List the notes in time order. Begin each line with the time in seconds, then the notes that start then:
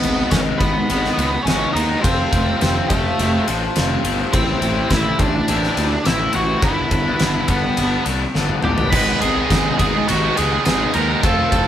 Already playing: G#2 D#3 G#3 B3 D#4 B4
0.03 G#1, ride
0.17 G#3 B3 D#4
0.30 G#1 G#2 D#3 G#3 B3 C#4 D#4 C#5, kick, snare, ride
0.59 G#1 D#3 G#3 B3 B4, kick, ride
0.63 D#4
0.76 muted distorted electric guitar stroke
0.88 G#1 D#3 G#3 B3 D#4, ride
1.05 snare
1.17 C#2 D#3 G#3 B3 D#4, ride
1.33 muted distorted electric guitar stroke
1.43 G#1 G#2 D#3 C#4 C#5
1.47 G#3 B3 D#4, snare, ride
1.72 D#2 D#3 G#3 D#4 D#5
1.76 B3 D#4, ride
1.88 G#3 B3 D#4
2.01 F1 F3 A3 C4 F4 C5, kick, ride
2.33 F1, kick, ride
2.45 A3 C4 F4
2.60 F1 F3 A3 C4 F4, snare, ride
2.88 F1 F3 A3 C4 F4 A4, kick, ride
3.05 muted distorted electric guitar stroke
3.19 F1 F3 A3 C4 F4, ride
3.45 A1 F3 A3 C4 F4, ride
3.62 muted distorted electric guitar stroke
3.76 F1 F3 A3 C4 F4, snare, ride
4.03 G1 F3 A3 C4 F4, ride
4.17 A3 C4 F4
4.33 A1 A2 E3 A3 C4 E4 C5, kick, ride
4.62 A1, ride
4.76 A3 C4 E4
4.90 A1 A2 E3 A3 C4 E4 E5, kick, snare, ride
5.19 A1 E3 A3 C4 D4 E4 D5, kick, ride
5.35 muted distorted electric guitar stroke
5.48 A1 E3 A3 C4 E4, ride
5.63 snare
5.77 D2 E3 A3 C4 E4, ride
5.92 muted distorted electric guitar stroke
6.04 A1 A2 E3 A3 C4 E4 E5, snare, ride
6.32 A1 E3 A3 C4 E4 F#4 F#5, ride
6.48 A3 C4 E4
6.62 G1 G2 D3 G3 B3 D4 E4 E5, kick, ride
6.91 G1, kick, ride
7.07 G3 B3 D4
7.19 G1 G2 D3 G3 B3 D4, snare, ride
7.48 G1 D3 G3 B3 D4 B4, kick, ride
7.63 muted distorted electric guitar stroke
7.77 G1 D3 G3 B3 D4, ride
8.06 C2 D3 G3 B3 D4, ride
8.22 muted distorted electric guitar stroke
8.35 G1 G2 D3 G3 B3 D4, snare
8.49 high tom
8.62 A1 D3 G3 B3 D4 G4 G5, mid tom
8.77 G3 B3 D4, floor tom
8.90 G#1 G#2 D#3 G#3 D#4 B4 B5, kick, splash, crash
8.94 B3
9.21 G#1 D#3 G#3 B3 D#4 G#4 G#5, ride
9.35 G#3 B3 D#4
9.50 G#1 G#2 D#3 G#3 B3 D#4, kick, snare, ride
9.78 G#1 D#3 G#3 B3 D#4 G#4 G#5, kick, ride
9.94 G#3 B3 D#4, muted distorted electric guitar stroke
10.08 G#1 D#3 G#3 B3 D#4 F#4 F#5, ride
10.24 G#3 B3 D#4
10.36 C#2 D#3 G#3 B3 D#4 G#4 G#5, ride
10.52 G#3 B3 D#4, muted distorted electric guitar stroke
10.65 G#1 G#2 D#3 G#3 B3 D#4 G#4 G#5, snare, ride
10.94 D#2 D#3 G#3 B3 A#4 A#5, ride
10.98 D#4
11.09 G#3 B3 D#4
11.22 F1 F3 A3 C4 F4 A4 A5, kick, ride
11.52 F1 F3 A3 C4 F4, kick, ride